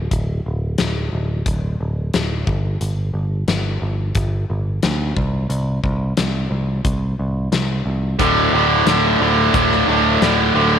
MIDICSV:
0, 0, Header, 1, 4, 480
1, 0, Start_track
1, 0, Tempo, 672646
1, 85, Time_signature, 4, 2, 24, 8
1, 7700, End_track
2, 0, Start_track
2, 0, Title_t, "Overdriven electric guitar"
2, 0, Program_c, 0, 29
2, 5845, Note_on_c, 0, 38, 80
2, 5851, Note_on_c, 0, 45, 87
2, 5852, Note_on_c, 0, 50, 93
2, 6086, Note_off_c, 0, 45, 0
2, 6091, Note_off_c, 0, 38, 0
2, 6093, Note_off_c, 0, 50, 0
2, 6093, Note_on_c, 0, 38, 66
2, 6095, Note_on_c, 0, 45, 70
2, 6096, Note_on_c, 0, 50, 80
2, 6323, Note_off_c, 0, 45, 0
2, 6324, Note_off_c, 0, 38, 0
2, 6326, Note_on_c, 0, 38, 82
2, 6331, Note_off_c, 0, 50, 0
2, 6332, Note_on_c, 0, 45, 87
2, 6334, Note_on_c, 0, 50, 91
2, 6563, Note_off_c, 0, 38, 0
2, 6566, Note_off_c, 0, 45, 0
2, 6571, Note_off_c, 0, 50, 0
2, 6572, Note_on_c, 0, 38, 77
2, 6574, Note_on_c, 0, 45, 71
2, 6579, Note_on_c, 0, 50, 84
2, 6800, Note_off_c, 0, 38, 0
2, 6806, Note_off_c, 0, 45, 0
2, 6809, Note_off_c, 0, 50, 0
2, 6809, Note_on_c, 0, 38, 77
2, 6815, Note_on_c, 0, 45, 82
2, 6818, Note_on_c, 0, 50, 87
2, 7038, Note_off_c, 0, 38, 0
2, 7041, Note_off_c, 0, 45, 0
2, 7047, Note_off_c, 0, 50, 0
2, 7047, Note_on_c, 0, 38, 80
2, 7050, Note_on_c, 0, 45, 74
2, 7056, Note_on_c, 0, 50, 80
2, 7279, Note_off_c, 0, 38, 0
2, 7282, Note_off_c, 0, 45, 0
2, 7285, Note_off_c, 0, 50, 0
2, 7287, Note_on_c, 0, 38, 83
2, 7291, Note_on_c, 0, 45, 97
2, 7294, Note_on_c, 0, 50, 95
2, 7513, Note_off_c, 0, 38, 0
2, 7520, Note_off_c, 0, 45, 0
2, 7520, Note_off_c, 0, 50, 0
2, 7522, Note_on_c, 0, 38, 76
2, 7528, Note_on_c, 0, 45, 80
2, 7529, Note_on_c, 0, 50, 90
2, 7700, Note_off_c, 0, 38, 0
2, 7700, Note_off_c, 0, 45, 0
2, 7700, Note_off_c, 0, 50, 0
2, 7700, End_track
3, 0, Start_track
3, 0, Title_t, "Picked electric bass"
3, 0, Program_c, 1, 34
3, 79, Note_on_c, 1, 26, 83
3, 286, Note_off_c, 1, 26, 0
3, 329, Note_on_c, 1, 26, 76
3, 532, Note_off_c, 1, 26, 0
3, 567, Note_on_c, 1, 26, 77
3, 771, Note_off_c, 1, 26, 0
3, 804, Note_on_c, 1, 26, 78
3, 1009, Note_off_c, 1, 26, 0
3, 1043, Note_on_c, 1, 26, 81
3, 1249, Note_off_c, 1, 26, 0
3, 1288, Note_on_c, 1, 26, 78
3, 1491, Note_off_c, 1, 26, 0
3, 1527, Note_on_c, 1, 26, 81
3, 1731, Note_off_c, 1, 26, 0
3, 1763, Note_on_c, 1, 31, 81
3, 1969, Note_off_c, 1, 31, 0
3, 2004, Note_on_c, 1, 31, 83
3, 2210, Note_off_c, 1, 31, 0
3, 2238, Note_on_c, 1, 31, 72
3, 2446, Note_off_c, 1, 31, 0
3, 2481, Note_on_c, 1, 31, 80
3, 2688, Note_off_c, 1, 31, 0
3, 2724, Note_on_c, 1, 31, 79
3, 2930, Note_off_c, 1, 31, 0
3, 2962, Note_on_c, 1, 31, 80
3, 3168, Note_off_c, 1, 31, 0
3, 3210, Note_on_c, 1, 31, 82
3, 3413, Note_off_c, 1, 31, 0
3, 3448, Note_on_c, 1, 38, 82
3, 3652, Note_off_c, 1, 38, 0
3, 3689, Note_on_c, 1, 36, 77
3, 3893, Note_off_c, 1, 36, 0
3, 3921, Note_on_c, 1, 36, 82
3, 4128, Note_off_c, 1, 36, 0
3, 4164, Note_on_c, 1, 36, 73
3, 4370, Note_off_c, 1, 36, 0
3, 4407, Note_on_c, 1, 36, 73
3, 4612, Note_off_c, 1, 36, 0
3, 4644, Note_on_c, 1, 36, 73
3, 4850, Note_off_c, 1, 36, 0
3, 4885, Note_on_c, 1, 36, 83
3, 5091, Note_off_c, 1, 36, 0
3, 5133, Note_on_c, 1, 36, 76
3, 5335, Note_off_c, 1, 36, 0
3, 5366, Note_on_c, 1, 36, 76
3, 5571, Note_off_c, 1, 36, 0
3, 5606, Note_on_c, 1, 36, 73
3, 5811, Note_off_c, 1, 36, 0
3, 5846, Note_on_c, 1, 26, 87
3, 6051, Note_off_c, 1, 26, 0
3, 6085, Note_on_c, 1, 26, 77
3, 6291, Note_off_c, 1, 26, 0
3, 6324, Note_on_c, 1, 26, 78
3, 6530, Note_off_c, 1, 26, 0
3, 6563, Note_on_c, 1, 26, 78
3, 6769, Note_off_c, 1, 26, 0
3, 6808, Note_on_c, 1, 26, 82
3, 7012, Note_off_c, 1, 26, 0
3, 7048, Note_on_c, 1, 26, 80
3, 7252, Note_off_c, 1, 26, 0
3, 7291, Note_on_c, 1, 26, 79
3, 7494, Note_off_c, 1, 26, 0
3, 7526, Note_on_c, 1, 26, 79
3, 7700, Note_off_c, 1, 26, 0
3, 7700, End_track
4, 0, Start_track
4, 0, Title_t, "Drums"
4, 81, Note_on_c, 9, 36, 92
4, 81, Note_on_c, 9, 42, 55
4, 152, Note_off_c, 9, 36, 0
4, 152, Note_off_c, 9, 42, 0
4, 556, Note_on_c, 9, 42, 59
4, 559, Note_on_c, 9, 38, 98
4, 628, Note_off_c, 9, 42, 0
4, 631, Note_off_c, 9, 38, 0
4, 1041, Note_on_c, 9, 42, 58
4, 1042, Note_on_c, 9, 36, 102
4, 1113, Note_off_c, 9, 36, 0
4, 1113, Note_off_c, 9, 42, 0
4, 1524, Note_on_c, 9, 42, 53
4, 1527, Note_on_c, 9, 38, 98
4, 1595, Note_off_c, 9, 42, 0
4, 1598, Note_off_c, 9, 38, 0
4, 1764, Note_on_c, 9, 36, 89
4, 1835, Note_off_c, 9, 36, 0
4, 2005, Note_on_c, 9, 42, 52
4, 2076, Note_off_c, 9, 42, 0
4, 2482, Note_on_c, 9, 42, 52
4, 2484, Note_on_c, 9, 38, 91
4, 2553, Note_off_c, 9, 42, 0
4, 2556, Note_off_c, 9, 38, 0
4, 2959, Note_on_c, 9, 42, 52
4, 2964, Note_on_c, 9, 36, 104
4, 3031, Note_off_c, 9, 42, 0
4, 3036, Note_off_c, 9, 36, 0
4, 3444, Note_on_c, 9, 42, 55
4, 3447, Note_on_c, 9, 38, 97
4, 3515, Note_off_c, 9, 42, 0
4, 3518, Note_off_c, 9, 38, 0
4, 3686, Note_on_c, 9, 36, 90
4, 3757, Note_off_c, 9, 36, 0
4, 3924, Note_on_c, 9, 42, 53
4, 3996, Note_off_c, 9, 42, 0
4, 4164, Note_on_c, 9, 36, 71
4, 4236, Note_off_c, 9, 36, 0
4, 4403, Note_on_c, 9, 42, 58
4, 4406, Note_on_c, 9, 38, 99
4, 4474, Note_off_c, 9, 42, 0
4, 4477, Note_off_c, 9, 38, 0
4, 4886, Note_on_c, 9, 42, 60
4, 4887, Note_on_c, 9, 36, 104
4, 4957, Note_off_c, 9, 42, 0
4, 4958, Note_off_c, 9, 36, 0
4, 5368, Note_on_c, 9, 42, 55
4, 5371, Note_on_c, 9, 38, 93
4, 5439, Note_off_c, 9, 42, 0
4, 5442, Note_off_c, 9, 38, 0
4, 5848, Note_on_c, 9, 36, 99
4, 5848, Note_on_c, 9, 42, 55
4, 5919, Note_off_c, 9, 36, 0
4, 5919, Note_off_c, 9, 42, 0
4, 6327, Note_on_c, 9, 42, 53
4, 6330, Note_on_c, 9, 38, 98
4, 6398, Note_off_c, 9, 42, 0
4, 6401, Note_off_c, 9, 38, 0
4, 6809, Note_on_c, 9, 36, 107
4, 6809, Note_on_c, 9, 42, 54
4, 6880, Note_off_c, 9, 42, 0
4, 6881, Note_off_c, 9, 36, 0
4, 6933, Note_on_c, 9, 38, 30
4, 7004, Note_off_c, 9, 38, 0
4, 7292, Note_on_c, 9, 42, 56
4, 7295, Note_on_c, 9, 38, 95
4, 7364, Note_off_c, 9, 42, 0
4, 7367, Note_off_c, 9, 38, 0
4, 7700, End_track
0, 0, End_of_file